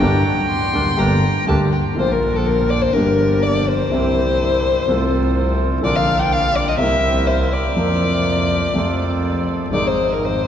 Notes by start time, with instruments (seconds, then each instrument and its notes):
Already playing: bandoneon G5
0.00 grand piano G1 G2 D3 G3 A#3 G4, double bass G1, bandoneon A#3 D4 G4, violin A#5
0.49 violin C6
0.73 double bass D2, grand piano D2 D3 G3 A#3 G4, bandoneon A#3 D4 G4
0.96 grand piano G1 G2 D3 G3 A#3 G4, double bass G1, bandoneon A#3 D4 G4, violin A#5
1.47 double bass D2, grand piano D2 D3 G3 A#3 G4, bandoneon A#3 D4 G4, violin A5
1.72 violin G5
1.94 grand piano A#1 A#2 D3 F3 A#3, double bass A#1, bandoneon A#3 D4 F4
1.99 grand piano F4, violin C5
2.12 violin A#4
2.36 violin A4
2.47 violin A#4
2.70 violin D5
2.82 violin C5
2.93 double bass G1, grand piano G1 G2 D3 G3 A#3 G4, bandoneon A#3 D4 G4, violin A#4
3.42 violin D5
3.68 violin C5
3.89 grand piano C2 C3 E3 G3 C4, double bass C2, bandoneon C4 E4 G4
3.94 grand piano G4
4.87 double bass C2, grand piano C2 C3 F3 A3, bandoneon C4 F4 A4
4.91 grand piano F4
5.81 grand piano A#1 A#2 D3 F3 A#3 F4, bandoneon D4 F4 A#4, violin D5
5.85 double bass A#1
5.96 violin F5
6.19 violin G5
6.33 violin F5
6.56 violin D5
6.68 violin D#5
6.77 grand piano C2 C3 G3 A#3, double bass C2, bandoneon C4 A#4, violin E5
6.81 grand piano E4, bandoneon E4
7.27 violin C5
7.53 violin D5
7.75 grand piano F2 C3 F3 A#3, double bass F2, bandoneon C4 F4
7.79 grand piano F4, bandoneon A#4
8.74 double bass F2, grand piano F2 C3 F3 A3, bandoneon C4 F4 A4
8.78 grand piano F4
9.71 grand piano G#1 G#2 C3 D#3 G#3 D#4, double bass G#1, bandoneon C4 D#4 G#4, violin D5
9.87 violin C5
10.13 violin A#4
10.25 violin C5